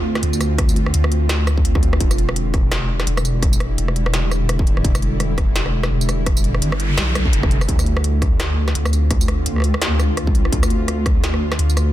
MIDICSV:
0, 0, Header, 1, 5, 480
1, 0, Start_track
1, 0, Tempo, 355030
1, 790, Time_signature, 4, 2, 24, 8
1, 16125, End_track
2, 0, Start_track
2, 0, Title_t, "Synth drone"
2, 0, Program_c, 0, 95
2, 0, Note_on_c, 0, 50, 76
2, 0, Note_on_c, 0, 60, 72
2, 0, Note_on_c, 0, 65, 86
2, 2655, Note_off_c, 0, 60, 0
2, 2655, Note_off_c, 0, 65, 0
2, 2656, Note_off_c, 0, 50, 0
2, 2703, Note_on_c, 0, 50, 78
2, 2705, Note_on_c, 0, 64, 84
2, 2706, Note_on_c, 0, 55, 71
2, 10334, Note_off_c, 0, 55, 0
2, 10334, Note_off_c, 0, 64, 0
2, 10388, Note_on_c, 0, 65, 84
2, 10390, Note_on_c, 0, 60, 72
2, 14192, Note_off_c, 0, 60, 0
2, 14232, Note_on_c, 0, 59, 71
2, 16125, Note_off_c, 0, 50, 0
2, 16125, Note_off_c, 0, 59, 0
2, 16125, Note_off_c, 0, 65, 0
2, 16125, End_track
3, 0, Start_track
3, 0, Title_t, "Wobble bass"
3, 0, Program_c, 1, 39
3, 0, Note_on_c, 1, 38, 99
3, 294, Note_off_c, 1, 38, 0
3, 309, Note_on_c, 1, 38, 99
3, 1253, Note_off_c, 1, 38, 0
3, 1270, Note_on_c, 1, 38, 97
3, 2694, Note_off_c, 1, 38, 0
3, 2711, Note_on_c, 1, 28, 97
3, 4134, Note_off_c, 1, 28, 0
3, 4147, Note_on_c, 1, 28, 102
3, 5093, Note_off_c, 1, 28, 0
3, 5108, Note_on_c, 1, 28, 100
3, 6108, Note_off_c, 1, 28, 0
3, 6108, Note_on_c, 1, 27, 100
3, 6533, Note_off_c, 1, 27, 0
3, 6551, Note_on_c, 1, 28, 96
3, 7974, Note_off_c, 1, 28, 0
3, 7987, Note_on_c, 1, 28, 100
3, 8932, Note_off_c, 1, 28, 0
3, 8950, Note_on_c, 1, 31, 99
3, 9414, Note_off_c, 1, 31, 0
3, 9430, Note_on_c, 1, 35, 99
3, 9894, Note_off_c, 1, 35, 0
3, 9910, Note_on_c, 1, 29, 100
3, 10374, Note_off_c, 1, 29, 0
3, 10390, Note_on_c, 1, 38, 97
3, 11814, Note_off_c, 1, 38, 0
3, 11832, Note_on_c, 1, 38, 99
3, 12775, Note_off_c, 1, 38, 0
3, 12791, Note_on_c, 1, 38, 100
3, 13791, Note_off_c, 1, 38, 0
3, 13791, Note_on_c, 1, 37, 100
3, 14214, Note_off_c, 1, 37, 0
3, 14230, Note_on_c, 1, 38, 98
3, 15654, Note_off_c, 1, 38, 0
3, 15670, Note_on_c, 1, 38, 99
3, 16125, Note_off_c, 1, 38, 0
3, 16125, End_track
4, 0, Start_track
4, 0, Title_t, "Noise sweep"
4, 0, Program_c, 2, 103
4, 8469, Note_on_c, 2, 60, 63
4, 10389, Note_off_c, 2, 60, 0
4, 16125, End_track
5, 0, Start_track
5, 0, Title_t, "Drums"
5, 209, Note_on_c, 9, 37, 76
5, 209, Note_on_c, 9, 38, 39
5, 309, Note_on_c, 9, 42, 68
5, 344, Note_off_c, 9, 37, 0
5, 344, Note_off_c, 9, 38, 0
5, 444, Note_off_c, 9, 42, 0
5, 449, Note_on_c, 9, 54, 37
5, 549, Note_off_c, 9, 54, 0
5, 549, Note_on_c, 9, 37, 53
5, 549, Note_on_c, 9, 42, 38
5, 549, Note_on_c, 9, 54, 36
5, 684, Note_off_c, 9, 37, 0
5, 684, Note_off_c, 9, 42, 0
5, 684, Note_off_c, 9, 54, 0
5, 791, Note_on_c, 9, 36, 127
5, 791, Note_on_c, 9, 37, 80
5, 791, Note_on_c, 9, 42, 78
5, 926, Note_off_c, 9, 36, 0
5, 926, Note_off_c, 9, 37, 0
5, 926, Note_off_c, 9, 42, 0
5, 930, Note_on_c, 9, 54, 64
5, 1032, Note_on_c, 9, 42, 37
5, 1065, Note_off_c, 9, 54, 0
5, 1167, Note_off_c, 9, 42, 0
5, 1169, Note_on_c, 9, 37, 52
5, 1269, Note_on_c, 9, 42, 66
5, 1304, Note_off_c, 9, 37, 0
5, 1404, Note_off_c, 9, 42, 0
5, 1408, Note_on_c, 9, 37, 78
5, 1509, Note_on_c, 9, 42, 38
5, 1543, Note_off_c, 9, 37, 0
5, 1644, Note_off_c, 9, 42, 0
5, 1749, Note_on_c, 9, 37, 51
5, 1749, Note_on_c, 9, 38, 127
5, 1749, Note_on_c, 9, 42, 81
5, 1884, Note_off_c, 9, 37, 0
5, 1884, Note_off_c, 9, 38, 0
5, 1884, Note_off_c, 9, 42, 0
5, 1989, Note_on_c, 9, 37, 74
5, 1989, Note_on_c, 9, 54, 35
5, 2125, Note_off_c, 9, 37, 0
5, 2125, Note_off_c, 9, 54, 0
5, 2130, Note_on_c, 9, 36, 65
5, 2230, Note_on_c, 9, 42, 66
5, 2265, Note_off_c, 9, 36, 0
5, 2365, Note_off_c, 9, 42, 0
5, 2369, Note_on_c, 9, 37, 51
5, 2370, Note_on_c, 9, 36, 113
5, 2471, Note_on_c, 9, 42, 37
5, 2504, Note_off_c, 9, 37, 0
5, 2505, Note_off_c, 9, 36, 0
5, 2606, Note_off_c, 9, 42, 0
5, 2609, Note_on_c, 9, 37, 74
5, 2711, Note_on_c, 9, 36, 120
5, 2711, Note_on_c, 9, 42, 75
5, 2745, Note_off_c, 9, 37, 0
5, 2846, Note_off_c, 9, 36, 0
5, 2846, Note_off_c, 9, 42, 0
5, 2850, Note_on_c, 9, 37, 51
5, 2850, Note_on_c, 9, 54, 68
5, 2953, Note_on_c, 9, 42, 35
5, 2985, Note_off_c, 9, 37, 0
5, 2985, Note_off_c, 9, 54, 0
5, 3089, Note_off_c, 9, 42, 0
5, 3092, Note_on_c, 9, 37, 81
5, 3193, Note_on_c, 9, 42, 65
5, 3227, Note_off_c, 9, 37, 0
5, 3328, Note_off_c, 9, 42, 0
5, 3431, Note_on_c, 9, 36, 107
5, 3432, Note_on_c, 9, 37, 51
5, 3432, Note_on_c, 9, 42, 35
5, 3566, Note_off_c, 9, 36, 0
5, 3567, Note_off_c, 9, 37, 0
5, 3567, Note_off_c, 9, 42, 0
5, 3671, Note_on_c, 9, 37, 76
5, 3671, Note_on_c, 9, 38, 123
5, 3671, Note_on_c, 9, 42, 78
5, 3806, Note_off_c, 9, 37, 0
5, 3806, Note_off_c, 9, 38, 0
5, 3806, Note_off_c, 9, 42, 0
5, 4051, Note_on_c, 9, 37, 50
5, 4051, Note_on_c, 9, 38, 37
5, 4151, Note_on_c, 9, 42, 64
5, 4186, Note_off_c, 9, 37, 0
5, 4186, Note_off_c, 9, 38, 0
5, 4286, Note_off_c, 9, 42, 0
5, 4291, Note_on_c, 9, 37, 81
5, 4291, Note_on_c, 9, 54, 38
5, 4393, Note_off_c, 9, 54, 0
5, 4393, Note_on_c, 9, 42, 35
5, 4393, Note_on_c, 9, 54, 38
5, 4427, Note_off_c, 9, 37, 0
5, 4528, Note_off_c, 9, 42, 0
5, 4528, Note_off_c, 9, 54, 0
5, 4631, Note_on_c, 9, 36, 116
5, 4632, Note_on_c, 9, 37, 52
5, 4632, Note_on_c, 9, 42, 78
5, 4766, Note_off_c, 9, 36, 0
5, 4767, Note_off_c, 9, 37, 0
5, 4767, Note_off_c, 9, 42, 0
5, 4771, Note_on_c, 9, 54, 70
5, 4872, Note_on_c, 9, 37, 82
5, 4872, Note_on_c, 9, 42, 36
5, 4906, Note_off_c, 9, 54, 0
5, 5007, Note_off_c, 9, 37, 0
5, 5007, Note_off_c, 9, 42, 0
5, 5113, Note_on_c, 9, 42, 65
5, 5248, Note_off_c, 9, 42, 0
5, 5250, Note_on_c, 9, 37, 52
5, 5354, Note_on_c, 9, 42, 35
5, 5386, Note_off_c, 9, 37, 0
5, 5489, Note_off_c, 9, 42, 0
5, 5492, Note_on_c, 9, 37, 79
5, 5591, Note_on_c, 9, 38, 116
5, 5591, Note_on_c, 9, 42, 79
5, 5627, Note_off_c, 9, 37, 0
5, 5726, Note_off_c, 9, 38, 0
5, 5726, Note_off_c, 9, 42, 0
5, 5833, Note_on_c, 9, 37, 52
5, 5833, Note_on_c, 9, 54, 38
5, 5968, Note_off_c, 9, 37, 0
5, 5968, Note_off_c, 9, 54, 0
5, 6073, Note_on_c, 9, 37, 83
5, 6073, Note_on_c, 9, 42, 64
5, 6208, Note_off_c, 9, 37, 0
5, 6208, Note_off_c, 9, 42, 0
5, 6210, Note_on_c, 9, 36, 104
5, 6313, Note_on_c, 9, 42, 35
5, 6345, Note_off_c, 9, 36, 0
5, 6448, Note_off_c, 9, 42, 0
5, 6450, Note_on_c, 9, 37, 52
5, 6551, Note_on_c, 9, 36, 117
5, 6552, Note_on_c, 9, 42, 81
5, 6585, Note_off_c, 9, 37, 0
5, 6686, Note_off_c, 9, 36, 0
5, 6687, Note_off_c, 9, 42, 0
5, 6691, Note_on_c, 9, 37, 83
5, 6691, Note_on_c, 9, 54, 72
5, 6793, Note_on_c, 9, 42, 38
5, 6827, Note_off_c, 9, 37, 0
5, 6827, Note_off_c, 9, 54, 0
5, 6928, Note_off_c, 9, 42, 0
5, 7031, Note_on_c, 9, 37, 56
5, 7031, Note_on_c, 9, 42, 69
5, 7167, Note_off_c, 9, 37, 0
5, 7167, Note_off_c, 9, 42, 0
5, 7271, Note_on_c, 9, 36, 105
5, 7271, Note_on_c, 9, 37, 79
5, 7271, Note_on_c, 9, 42, 36
5, 7406, Note_off_c, 9, 36, 0
5, 7407, Note_off_c, 9, 37, 0
5, 7407, Note_off_c, 9, 42, 0
5, 7512, Note_on_c, 9, 38, 117
5, 7512, Note_on_c, 9, 42, 80
5, 7647, Note_off_c, 9, 38, 0
5, 7647, Note_off_c, 9, 42, 0
5, 7649, Note_on_c, 9, 37, 53
5, 7784, Note_off_c, 9, 37, 0
5, 7889, Note_on_c, 9, 37, 83
5, 7889, Note_on_c, 9, 38, 35
5, 8024, Note_off_c, 9, 37, 0
5, 8024, Note_off_c, 9, 38, 0
5, 8128, Note_on_c, 9, 54, 40
5, 8231, Note_off_c, 9, 54, 0
5, 8231, Note_on_c, 9, 37, 55
5, 8231, Note_on_c, 9, 42, 36
5, 8231, Note_on_c, 9, 54, 40
5, 8366, Note_off_c, 9, 37, 0
5, 8366, Note_off_c, 9, 42, 0
5, 8366, Note_off_c, 9, 54, 0
5, 8470, Note_on_c, 9, 36, 114
5, 8470, Note_on_c, 9, 37, 87
5, 8470, Note_on_c, 9, 42, 83
5, 8605, Note_off_c, 9, 36, 0
5, 8605, Note_off_c, 9, 37, 0
5, 8605, Note_off_c, 9, 42, 0
5, 8608, Note_on_c, 9, 54, 72
5, 8708, Note_on_c, 9, 42, 38
5, 8744, Note_off_c, 9, 54, 0
5, 8844, Note_off_c, 9, 42, 0
5, 8849, Note_on_c, 9, 37, 58
5, 8950, Note_on_c, 9, 42, 70
5, 8984, Note_off_c, 9, 37, 0
5, 9086, Note_off_c, 9, 42, 0
5, 9090, Note_on_c, 9, 37, 82
5, 9190, Note_on_c, 9, 42, 38
5, 9225, Note_off_c, 9, 37, 0
5, 9325, Note_off_c, 9, 42, 0
5, 9431, Note_on_c, 9, 37, 57
5, 9431, Note_on_c, 9, 38, 118
5, 9431, Note_on_c, 9, 42, 84
5, 9566, Note_off_c, 9, 37, 0
5, 9566, Note_off_c, 9, 38, 0
5, 9566, Note_off_c, 9, 42, 0
5, 9672, Note_on_c, 9, 37, 84
5, 9672, Note_on_c, 9, 42, 37
5, 9672, Note_on_c, 9, 54, 38
5, 9808, Note_off_c, 9, 37, 0
5, 9808, Note_off_c, 9, 42, 0
5, 9808, Note_off_c, 9, 54, 0
5, 9809, Note_on_c, 9, 36, 61
5, 9912, Note_on_c, 9, 42, 70
5, 9944, Note_off_c, 9, 36, 0
5, 10047, Note_off_c, 9, 42, 0
5, 10049, Note_on_c, 9, 36, 102
5, 10051, Note_on_c, 9, 37, 58
5, 10154, Note_on_c, 9, 42, 38
5, 10184, Note_off_c, 9, 36, 0
5, 10186, Note_off_c, 9, 37, 0
5, 10289, Note_off_c, 9, 42, 0
5, 10293, Note_on_c, 9, 37, 82
5, 10293, Note_on_c, 9, 54, 38
5, 10391, Note_on_c, 9, 36, 124
5, 10393, Note_on_c, 9, 42, 85
5, 10428, Note_off_c, 9, 37, 0
5, 10428, Note_off_c, 9, 54, 0
5, 10526, Note_off_c, 9, 36, 0
5, 10528, Note_off_c, 9, 42, 0
5, 10531, Note_on_c, 9, 37, 57
5, 10531, Note_on_c, 9, 54, 68
5, 10632, Note_on_c, 9, 42, 41
5, 10666, Note_off_c, 9, 37, 0
5, 10666, Note_off_c, 9, 54, 0
5, 10767, Note_off_c, 9, 42, 0
5, 10771, Note_on_c, 9, 37, 87
5, 10873, Note_on_c, 9, 42, 74
5, 10906, Note_off_c, 9, 37, 0
5, 11008, Note_off_c, 9, 42, 0
5, 11112, Note_on_c, 9, 36, 109
5, 11113, Note_on_c, 9, 37, 54
5, 11113, Note_on_c, 9, 42, 40
5, 11247, Note_off_c, 9, 36, 0
5, 11248, Note_off_c, 9, 37, 0
5, 11248, Note_off_c, 9, 42, 0
5, 11353, Note_on_c, 9, 37, 86
5, 11353, Note_on_c, 9, 38, 120
5, 11353, Note_on_c, 9, 42, 84
5, 11488, Note_off_c, 9, 37, 0
5, 11488, Note_off_c, 9, 38, 0
5, 11488, Note_off_c, 9, 42, 0
5, 11731, Note_on_c, 9, 37, 57
5, 11731, Note_on_c, 9, 38, 37
5, 11833, Note_on_c, 9, 42, 73
5, 11866, Note_off_c, 9, 37, 0
5, 11866, Note_off_c, 9, 38, 0
5, 11968, Note_off_c, 9, 42, 0
5, 11972, Note_on_c, 9, 37, 88
5, 11972, Note_on_c, 9, 54, 37
5, 12073, Note_off_c, 9, 54, 0
5, 12073, Note_on_c, 9, 42, 39
5, 12073, Note_on_c, 9, 54, 38
5, 12107, Note_off_c, 9, 37, 0
5, 12209, Note_off_c, 9, 42, 0
5, 12209, Note_off_c, 9, 54, 0
5, 12311, Note_on_c, 9, 37, 56
5, 12311, Note_on_c, 9, 42, 83
5, 12312, Note_on_c, 9, 36, 124
5, 12446, Note_off_c, 9, 37, 0
5, 12446, Note_off_c, 9, 42, 0
5, 12447, Note_off_c, 9, 36, 0
5, 12450, Note_on_c, 9, 54, 66
5, 12551, Note_on_c, 9, 37, 83
5, 12551, Note_on_c, 9, 42, 42
5, 12585, Note_off_c, 9, 54, 0
5, 12686, Note_off_c, 9, 37, 0
5, 12686, Note_off_c, 9, 42, 0
5, 12790, Note_on_c, 9, 42, 72
5, 12926, Note_off_c, 9, 42, 0
5, 12930, Note_on_c, 9, 37, 24
5, 12955, Note_off_c, 9, 37, 0
5, 12955, Note_on_c, 9, 37, 31
5, 12980, Note_off_c, 9, 37, 0
5, 12980, Note_on_c, 9, 37, 38
5, 13005, Note_off_c, 9, 37, 0
5, 13005, Note_on_c, 9, 37, 44
5, 13032, Note_on_c, 9, 42, 39
5, 13140, Note_off_c, 9, 37, 0
5, 13167, Note_off_c, 9, 42, 0
5, 13170, Note_on_c, 9, 37, 81
5, 13271, Note_on_c, 9, 38, 127
5, 13271, Note_on_c, 9, 42, 87
5, 13306, Note_off_c, 9, 37, 0
5, 13406, Note_off_c, 9, 38, 0
5, 13406, Note_off_c, 9, 42, 0
5, 13513, Note_on_c, 9, 37, 54
5, 13513, Note_on_c, 9, 54, 36
5, 13648, Note_off_c, 9, 37, 0
5, 13648, Note_off_c, 9, 54, 0
5, 13753, Note_on_c, 9, 37, 82
5, 13753, Note_on_c, 9, 42, 72
5, 13888, Note_off_c, 9, 37, 0
5, 13888, Note_off_c, 9, 42, 0
5, 13889, Note_on_c, 9, 36, 108
5, 13992, Note_on_c, 9, 42, 38
5, 14025, Note_off_c, 9, 36, 0
5, 14127, Note_off_c, 9, 42, 0
5, 14131, Note_on_c, 9, 37, 53
5, 14230, Note_on_c, 9, 36, 127
5, 14231, Note_on_c, 9, 42, 85
5, 14266, Note_off_c, 9, 37, 0
5, 14365, Note_off_c, 9, 36, 0
5, 14366, Note_off_c, 9, 42, 0
5, 14371, Note_on_c, 9, 37, 83
5, 14371, Note_on_c, 9, 54, 66
5, 14471, Note_on_c, 9, 42, 40
5, 14506, Note_off_c, 9, 37, 0
5, 14506, Note_off_c, 9, 54, 0
5, 14606, Note_off_c, 9, 42, 0
5, 14712, Note_on_c, 9, 37, 53
5, 14712, Note_on_c, 9, 42, 68
5, 14847, Note_off_c, 9, 37, 0
5, 14847, Note_off_c, 9, 42, 0
5, 14951, Note_on_c, 9, 36, 113
5, 14952, Note_on_c, 9, 37, 76
5, 14952, Note_on_c, 9, 42, 38
5, 15086, Note_off_c, 9, 36, 0
5, 15087, Note_off_c, 9, 37, 0
5, 15087, Note_off_c, 9, 42, 0
5, 15191, Note_on_c, 9, 38, 127
5, 15191, Note_on_c, 9, 42, 84
5, 15326, Note_off_c, 9, 38, 0
5, 15326, Note_off_c, 9, 42, 0
5, 15329, Note_on_c, 9, 37, 52
5, 15465, Note_off_c, 9, 37, 0
5, 15570, Note_on_c, 9, 37, 79
5, 15570, Note_on_c, 9, 38, 39
5, 15671, Note_on_c, 9, 42, 69
5, 15705, Note_off_c, 9, 37, 0
5, 15705, Note_off_c, 9, 38, 0
5, 15806, Note_off_c, 9, 42, 0
5, 15813, Note_on_c, 9, 54, 37
5, 15912, Note_off_c, 9, 54, 0
5, 15912, Note_on_c, 9, 37, 52
5, 15912, Note_on_c, 9, 42, 39
5, 15912, Note_on_c, 9, 54, 35
5, 16047, Note_off_c, 9, 37, 0
5, 16047, Note_off_c, 9, 42, 0
5, 16047, Note_off_c, 9, 54, 0
5, 16125, End_track
0, 0, End_of_file